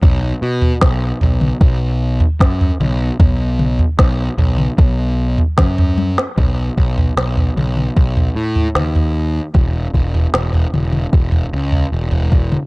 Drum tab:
SD |----o-------o---|----o-------o--o|----o-------o---|----o-----------|
T1 |----------------|--------------o-|----------------|----------------|
T2 |-------o------o-|--o----o----o---|------oo----o---|------oo-------o|
FT |o--o--o----o-o--|o--o--o----o-o--|o--o-o---o-o-o--|o--o-o---o-o-o--|
BD |o---o---o---o---|o---o---o---o---|o-o-----o-------|o-o-----o-----o-|